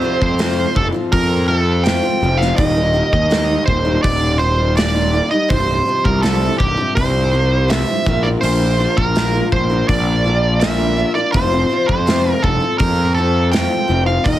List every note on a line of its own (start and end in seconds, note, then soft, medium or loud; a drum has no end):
0.00 0.21 F2 medium
0.00 0.38 C3 medium
0.00 0.39 F3 medium
0.00 0.21 C5 medium
0.04 0.40 C4 medium
0.04 0.40 F4 medium
0.22 0.64 F2 medium
0.22 0.76 C5 medium
0.22 kick medium
0.38 0.94 F2 medium
0.38 0.74 C3 medium
0.38 0.59 F3 medium
0.38 0.57 C4 medium
0.38 0.55 F4 medium
0.38 snare loud
0.38 open hi-hat soft
0.56 0.74 F3 medium
0.56 0.75 C4 medium
0.56 0.75 F4 medium
0.75 0.91 F1 medium
0.75 0.86 A4 medium
0.75 muted steel-string acoustic guitar stroke soft
0.75 kick medium
0.92 1.47 F3 medium
0.92 1.49 C4 medium
0.92 1.49 F4 medium
1.12 1.99 F2 medium
1.12 1.47 A#4 medium
1.12 kick loud
1.12 open hi-hat soft
1.47 1.84 C3 medium
1.47 1.85 F3 medium
1.47 1.85 C4 medium
1.47 1.86 F4 medium
1.47 1.82 A4 medium
1.84 2.39 F2 medium
1.84 2.20 C3 medium
1.84 2.04 F3 medium
1.84 2.03 C4 medium
1.84 2.01 F4 medium
1.84 2.41 G5 medium
1.84 snare loud
1.84 open hi-hat soft
2.02 2.21 F3 medium
2.02 2.22 C4 medium
2.02 2.23 F4 medium
2.21 2.51 F1 medium
2.21 2.56 C3 medium
2.21 2.41 F3 medium
2.21 2.40 C4 medium
2.21 2.37 F4 medium
2.37 2.57 C4 medium
2.37 2.55 F4 medium
2.37 2.56 F5 medium
2.37 snare soft
2.42 2.57 F3 medium
2.56 3.01 D#1 medium
2.56 3.12 D#2 medium
2.56 3.13 A#2 medium
2.56 2.77 D#3 medium
2.56 2.77 G3 medium
2.56 2.75 A#3 medium
2.56 2.73 D#4 medium
2.56 3.12 D#5 medium
2.56 kick loud
2.56 open hi-hat soft
2.75 2.92 D#3 medium
2.75 2.94 G3 medium
2.75 2.95 A#3 medium
2.75 2.95 D#4 medium
2.93 3.30 D#3 medium
2.93 3.32 G3 medium
2.93 3.31 A#3 medium
2.93 3.32 D#4 medium
3.13 3.56 D#2 medium
3.13 3.65 D#5 medium
3.13 kick medium
3.30 3.85 D#2 medium
3.30 3.86 A#2 medium
3.30 3.50 D#3 medium
3.30 3.50 G3 medium
3.30 3.48 A#3 medium
3.30 3.47 D#4 loud
3.30 snare loud
3.30 open hi-hat soft
3.48 3.66 D#3 medium
3.48 3.67 G3 medium
3.48 3.67 A#3 medium
3.48 3.67 D#4 medium
3.66 3.96 D#1 medium
3.66 4.01 C5 medium
3.66 muted steel-string acoustic guitar stroke soft
3.66 kick medium
3.85 4.38 D#3 medium
3.85 4.40 G3 medium
3.85 4.41 A#3 medium
3.85 4.41 D#4 medium
4.03 5.19 D#1 medium
4.03 4.39 D5 medium
4.03 kick loud
4.03 open hi-hat soft
4.39 4.76 D#3 medium
4.39 4.78 G3 medium
4.39 4.77 A#3 medium
4.39 4.78 D#4 medium
4.39 4.74 C5 medium
4.76 5.31 D#2 medium
4.76 5.32 A#2 medium
4.76 4.96 D#3 medium
4.76 4.96 G3 medium
4.76 4.95 A#3 medium
4.76 4.93 D#4 medium
4.76 5.30 D5 medium
4.76 snare loud
4.76 open hi-hat soft
4.94 5.11 D#3 medium
4.94 5.13 G3 medium
4.94 5.14 A#3 medium
4.94 5.14 D#4 medium
5.12 5.33 D#3 medium
5.12 5.33 G3 medium
5.12 5.31 A#3 medium
5.12 5.30 D#4 medium
5.31 5.49 D#3 medium
5.31 5.51 G3 medium
5.31 5.48 A#3 medium
5.31 5.47 D#4 medium
5.31 5.49 D#5 medium
5.48 5.79 C1 medium
5.48 5.84 C2 medium
5.48 5.69 G2 medium
5.48 5.67 C3 medium
5.48 5.67 F3 medium
5.48 6.06 C5 medium
5.48 kick loud
5.48 open hi-hat soft
5.67 5.86 G2 soft
5.67 5.87 C3 medium
5.67 5.89 F3 medium
5.85 6.21 C2 medium
5.85 6.22 G2 medium
5.85 6.24 C3 medium
5.85 6.25 F3 medium
6.04 6.48 C2 medium
6.04 6.22 A#4 medium
6.04 kick medium
6.22 6.59 C2 medium
6.22 6.43 G2 medium
6.22 6.42 C3 medium
6.22 6.41 F3 loud
6.22 6.57 A4 medium
6.22 snare medium
6.22 open hi-hat soft
6.41 6.59 G2 medium
6.41 6.59 C3 medium
6.41 6.60 F3 medium
6.58 6.74 C1 medium
6.58 6.93 G4 medium
6.58 muted steel-string acoustic guitar stroke soft
6.58 kick medium
6.77 7.32 G2 medium
6.77 7.33 C3 medium
6.77 7.34 F3 medium
6.95 7.83 C2 medium
6.95 7.71 C5 medium
6.95 kick loud
6.95 open hi-hat soft
7.32 7.67 C2 medium
7.32 7.68 G2 medium
7.32 7.70 C3 medium
7.32 7.71 F3 medium
7.68 8.03 C2 medium
7.68 7.89 G2 medium
7.68 7.88 C3 medium
7.68 7.87 F3 medium
7.68 8.26 E5 medium
7.68 snare loud
7.68 open hi-hat soft
7.87 8.05 G2 medium
7.87 8.04 C3 medium
7.87 8.06 F3 medium
8.05 8.35 A#1 medium
8.05 8.40 A#2 medium
8.05 8.42 F3 medium
8.05 8.26 A#3 medium
8.05 8.25 D4 medium
8.05 8.25 F4 medium
8.05 8.23 A#4 medium
8.05 kick medium
8.23 8.42 D4 medium
8.23 8.44 F4 medium
8.23 8.44 A#4 medium
8.23 8.28 D5 medium
8.27 8.42 A#3 medium
8.41 8.85 A#1 medium
8.41 8.97 A#2 medium
8.41 9.15 F3 medium
8.41 8.62 A#3 medium
8.41 8.61 D4 medium
8.41 8.61 F4 loud
8.41 8.98 C5 medium
8.41 open hi-hat soft
8.45 8.59 A#4 medium
8.60 8.77 A#3 medium
8.60 8.78 D4 medium
8.60 8.80 F4 medium
8.60 8.80 A#4 medium
8.78 9.15 A#3 medium
8.78 9.16 D4 medium
8.78 9.17 F4 medium
8.78 9.17 A#4 medium
8.97 9.40 A#1 medium
8.97 9.48 A#4 medium
8.97 kick medium
9.15 9.70 A#2 medium
9.15 10.61 F3 medium
9.15 9.36 A#3 medium
9.15 9.34 D4 medium
9.15 9.34 F4 medium
9.15 9.32 A#4 medium
9.15 snare loud
9.15 open hi-hat soft
9.33 9.51 A#3 soft
9.33 9.51 D4 medium
9.33 9.52 F4 medium
9.33 9.52 A#4 medium
9.52 9.81 A#1 medium
9.52 9.86 C5 medium
9.52 muted steel-string acoustic guitar stroke soft
9.52 kick medium
9.70 10.23 A#3 medium
9.70 10.25 D4 medium
9.70 10.25 F4 medium
9.70 10.27 A#4 medium
9.88 11.03 A#1 medium
9.88 10.64 D5 medium
9.88 kick loud
9.88 open hi-hat soft
10.24 10.61 A#3 medium
10.24 10.61 D4 medium
10.24 10.62 F4 medium
10.24 10.63 A#4 medium
10.60 11.16 A#2 medium
10.60 11.16 F3 medium
10.60 10.81 A#3 medium
10.60 10.80 D4 medium
10.60 10.79 F4 medium
10.60 11.11 E5 medium
10.60 snare loud
10.60 open hi-hat soft
10.64 10.77 A#4 medium
10.79 10.96 A#3 medium
10.79 10.97 D4 medium
10.79 10.98 F4 medium
10.79 10.99 A#4 medium
10.97 11.17 A#3 medium
10.97 11.16 D4 medium
10.97 11.15 F4 medium
10.97 11.14 A#4 medium
11.15 11.33 A#3 medium
11.15 11.33 D4 medium
11.15 11.32 F4 medium
11.15 11.32 A#4 medium
11.15 11.32 D5 medium
11.32 11.63 F1 medium
11.32 11.88 F2 medium
11.32 11.68 C3 medium
11.32 11.54 F3 medium
11.32 11.52 C4 medium
11.32 11.87 C5 medium
11.32 kick loud
11.32 open hi-hat soft
11.36 11.50 F4 medium
11.52 11.69 F3 medium
11.52 11.71 C4 medium
11.52 11.71 F4 medium
11.69 12.06 C3 medium
11.69 12.06 F3 medium
11.69 12.07 C4 medium
11.69 12.08 F4 medium
11.88 12.32 F2 medium
11.88 12.33 C5 medium
11.88 kick medium
12.06 12.61 F2 medium
12.06 12.42 C3 medium
12.06 12.26 F3 medium
12.06 12.24 C4 loud
12.06 12.23 F4 medium
12.06 snare loud
12.06 open hi-hat soft
12.24 12.42 F3 medium
12.24 12.42 C4 medium
12.24 12.43 F4 medium
12.33 12.45 A#4 medium
12.43 12.58 F1 medium
12.43 12.78 A4 medium
12.43 muted steel-string acoustic guitar stroke soft
12.43 kick medium
12.60 13.16 F3 medium
12.60 13.17 C4 medium
12.60 13.18 F4 medium
12.78 13.66 F2 medium
12.78 13.13 A#4 medium
12.78 kick loud
12.78 open hi-hat soft
13.14 13.51 C3 medium
13.14 13.52 F3 medium
13.14 13.53 C4 medium
13.14 13.49 A4 medium
13.19 13.54 F4 medium
13.52 14.07 F2 medium
13.52 13.87 C3 medium
13.52 13.72 F3 medium
13.52 13.70 C4 medium
13.52 13.68 F4 medium
13.52 14.03 G5 medium
13.52 snare loud
13.52 open hi-hat soft
13.69 13.88 F3 medium
13.69 13.89 C4 medium
13.69 13.90 F4 medium
13.88 14.18 F1 medium
13.88 14.23 C3 medium
13.88 14.08 F3 medium
13.88 14.07 C4 medium
13.88 14.05 F4 medium
14.06 14.24 F3 medium
14.06 14.24 C4 medium
14.06 14.23 F4 medium
14.06 14.25 F5 medium
14.24 14.39 D#1 medium
14.24 14.39 D#2 medium
14.24 14.39 A#2 medium
14.24 14.39 D#3 medium
14.24 14.39 G3 medium
14.24 14.39 A#3 medium
14.24 14.39 D#4 loud
14.24 14.39 D#5 medium
14.24 kick loud
14.24 open hi-hat soft